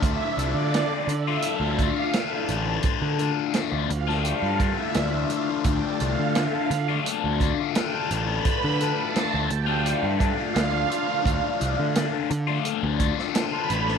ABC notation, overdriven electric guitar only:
X:1
M:4/4
L:1/16
Q:1/4=86
K:Ddor
V:1 name="Overdriven electric guitar"
[D,A,DF]2 [D,A,DF]2 [D,A,DF] [A,DF]2 [A,DF]3 [D,A,DF] [A,DF] [D,A,DF] [A,DF] [D,A,DF] [A,DF] | [D,A,DF]2 [D,A,DF]2 [D,A,DF] [A,DF]2 [A,DF]3 [D,A,DF] [A,DF] [D,A,DF] [A,DF] [D,A,DF] [A,DF] | [D,A,DF]2 [D,A,DF]2 [D,A,DF] [A,DF]2 [A,DF]3 [D,A,DF] [A,DF] [D,A,DF] [A,DF] [D,A,DF] [A,DF] | [D,A,DF]2 [D,A,DF]2 [D,A,DF] [A,DF]2 [A,DF]3 [D,A,DF] [A,DF] [D,A,DF] [A,DF] [D,A,DF] [A,DF] |
[D,A,DF]2 [D,A,DF]2 [D,A,DF] [A,DF]2 [A,DF]3 [D,A,DF] [A,DF] [D,A,DF] [A,DF] [D,A,DF] [A,DF] |]